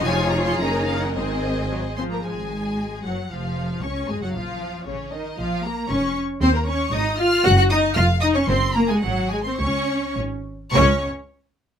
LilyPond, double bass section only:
\new Staff \with { instrumentName = "Double bass section" } { \clef bass \time 2/4 \key des \major \tempo 4 = 113 f,,4 ges,,4 | aes,,4. r8 | aes,,4. ges,,8 | f,,4 des,8 aes,,16 ges,,16 |
bes,,4 a,,4 | bes,,4 f,,4 | ees,4 aes,,4 | ges,,4 f,,4 |
ges,,4 aes,,4 | des,4 aes,,4 | des,8 r4. | }